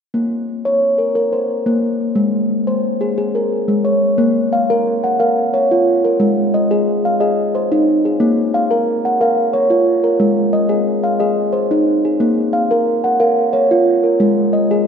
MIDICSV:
0, 0, Header, 1, 2, 480
1, 0, Start_track
1, 0, Key_signature, -5, "minor"
1, 0, Tempo, 673401
1, 98, Time_signature, 3, 2, 24, 8
1, 4417, Tempo, 668151
1, 10649, End_track
2, 0, Start_track
2, 0, Title_t, "Steel tongue drum"
2, 0, Program_c, 0, 114
2, 99, Note_on_c, 0, 58, 54
2, 465, Note_on_c, 0, 73, 53
2, 701, Note_on_c, 0, 70, 42
2, 705, Note_off_c, 0, 73, 0
2, 814, Note_off_c, 0, 70, 0
2, 822, Note_on_c, 0, 70, 54
2, 946, Note_on_c, 0, 72, 45
2, 1061, Note_off_c, 0, 70, 0
2, 1176, Note_off_c, 0, 58, 0
2, 1185, Note_on_c, 0, 58, 59
2, 1302, Note_off_c, 0, 72, 0
2, 1425, Note_off_c, 0, 58, 0
2, 1536, Note_on_c, 0, 56, 66
2, 1779, Note_off_c, 0, 56, 0
2, 1905, Note_on_c, 0, 72, 49
2, 2145, Note_off_c, 0, 72, 0
2, 2145, Note_on_c, 0, 68, 51
2, 2256, Note_off_c, 0, 68, 0
2, 2265, Note_on_c, 0, 68, 56
2, 2388, Note_on_c, 0, 70, 45
2, 2503, Note_off_c, 0, 68, 0
2, 2624, Note_on_c, 0, 56, 56
2, 2741, Note_on_c, 0, 73, 49
2, 2742, Note_off_c, 0, 70, 0
2, 2864, Note_off_c, 0, 56, 0
2, 2979, Note_on_c, 0, 58, 70
2, 3105, Note_off_c, 0, 73, 0
2, 3220, Note_off_c, 0, 58, 0
2, 3226, Note_on_c, 0, 77, 54
2, 3351, Note_on_c, 0, 70, 61
2, 3586, Note_off_c, 0, 77, 0
2, 3587, Note_off_c, 0, 70, 0
2, 3590, Note_on_c, 0, 78, 52
2, 3703, Note_on_c, 0, 77, 48
2, 3706, Note_on_c, 0, 70, 56
2, 3941, Note_off_c, 0, 78, 0
2, 3942, Note_off_c, 0, 70, 0
2, 3947, Note_on_c, 0, 73, 49
2, 4064, Note_off_c, 0, 77, 0
2, 4073, Note_on_c, 0, 65, 59
2, 4305, Note_off_c, 0, 73, 0
2, 4306, Note_off_c, 0, 65, 0
2, 4309, Note_on_c, 0, 70, 52
2, 4417, Note_on_c, 0, 56, 73
2, 4545, Note_off_c, 0, 70, 0
2, 4664, Note_on_c, 0, 75, 57
2, 4785, Note_on_c, 0, 68, 66
2, 5023, Note_off_c, 0, 68, 0
2, 5025, Note_off_c, 0, 75, 0
2, 5031, Note_on_c, 0, 77, 50
2, 5140, Note_on_c, 0, 75, 49
2, 5142, Note_on_c, 0, 68, 59
2, 5153, Note_off_c, 0, 56, 0
2, 5380, Note_off_c, 0, 68, 0
2, 5383, Note_off_c, 0, 77, 0
2, 5388, Note_on_c, 0, 72, 51
2, 5504, Note_off_c, 0, 75, 0
2, 5509, Note_on_c, 0, 63, 66
2, 5746, Note_off_c, 0, 63, 0
2, 5747, Note_off_c, 0, 72, 0
2, 5749, Note_on_c, 0, 68, 49
2, 5856, Note_on_c, 0, 58, 71
2, 5986, Note_off_c, 0, 68, 0
2, 6097, Note_off_c, 0, 58, 0
2, 6102, Note_on_c, 0, 77, 58
2, 6220, Note_on_c, 0, 70, 61
2, 6462, Note_off_c, 0, 70, 0
2, 6465, Note_off_c, 0, 77, 0
2, 6467, Note_on_c, 0, 78, 49
2, 6581, Note_on_c, 0, 70, 58
2, 6582, Note_on_c, 0, 77, 51
2, 6814, Note_on_c, 0, 73, 57
2, 6820, Note_off_c, 0, 70, 0
2, 6821, Note_off_c, 0, 78, 0
2, 6935, Note_on_c, 0, 65, 62
2, 6944, Note_off_c, 0, 77, 0
2, 7176, Note_on_c, 0, 70, 50
2, 7178, Note_off_c, 0, 65, 0
2, 7180, Note_off_c, 0, 73, 0
2, 7291, Note_on_c, 0, 56, 70
2, 7419, Note_off_c, 0, 70, 0
2, 7530, Note_on_c, 0, 75, 54
2, 7534, Note_off_c, 0, 56, 0
2, 7647, Note_on_c, 0, 68, 59
2, 7893, Note_on_c, 0, 77, 50
2, 7894, Note_off_c, 0, 68, 0
2, 7898, Note_off_c, 0, 75, 0
2, 8009, Note_on_c, 0, 75, 50
2, 8012, Note_on_c, 0, 68, 58
2, 8245, Note_on_c, 0, 72, 53
2, 8253, Note_off_c, 0, 77, 0
2, 8254, Note_off_c, 0, 68, 0
2, 8377, Note_off_c, 0, 75, 0
2, 8378, Note_on_c, 0, 63, 63
2, 8615, Note_off_c, 0, 72, 0
2, 8619, Note_off_c, 0, 63, 0
2, 8621, Note_on_c, 0, 68, 45
2, 8730, Note_on_c, 0, 58, 66
2, 8860, Note_off_c, 0, 68, 0
2, 8967, Note_on_c, 0, 77, 54
2, 8973, Note_off_c, 0, 58, 0
2, 9095, Note_on_c, 0, 70, 64
2, 9333, Note_on_c, 0, 78, 54
2, 9335, Note_off_c, 0, 77, 0
2, 9337, Note_off_c, 0, 70, 0
2, 9446, Note_on_c, 0, 77, 48
2, 9447, Note_on_c, 0, 70, 59
2, 9685, Note_on_c, 0, 73, 57
2, 9691, Note_off_c, 0, 70, 0
2, 9692, Note_off_c, 0, 78, 0
2, 9814, Note_off_c, 0, 77, 0
2, 9815, Note_on_c, 0, 65, 67
2, 10048, Note_on_c, 0, 70, 45
2, 10054, Note_off_c, 0, 73, 0
2, 10056, Note_off_c, 0, 65, 0
2, 10166, Note_on_c, 0, 56, 73
2, 10293, Note_off_c, 0, 70, 0
2, 10404, Note_on_c, 0, 75, 56
2, 10410, Note_off_c, 0, 56, 0
2, 10532, Note_on_c, 0, 68, 65
2, 10649, Note_off_c, 0, 68, 0
2, 10649, Note_off_c, 0, 75, 0
2, 10649, End_track
0, 0, End_of_file